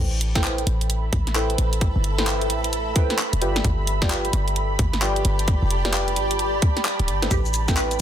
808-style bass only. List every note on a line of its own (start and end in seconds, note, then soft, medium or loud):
0.00 0.65 A1 loud
0.67 1.10 A1 medium
1.13 1.56 A1 medium
1.58 1.92 A1 medium
1.96 2.51 G1 loud
2.50 2.94 A1 loud
3.33 3.43 E1 loud
3.42 3.62 G1 medium
3.64 4.31 G1 loud
4.33 4.77 G1 medium
4.79 5.23 G1 medium
5.25 5.59 G1 medium
5.62 6.18 F1 loud
6.16 6.60 G1 loud
7.00 7.10 D1 medium
7.08 7.28 G1 medium
7.31 7.98 A1 loud